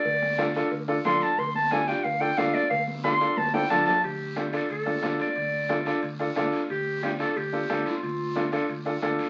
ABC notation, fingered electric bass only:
X:1
M:4/4
L:1/8
Q:1/4=180
K:Dm
V:1 name="Fingered electric bass" clef=bass
D,,4 D,,2 D,, z | D,,4 D,,2 D,, z | D,,4 D,,2 D,, z | D,,4 D,,2 D,, z |
D,,4 D,,2 D,, z | D,,4 D,,2 D,, z | D,,4 D,,2 D,, z |]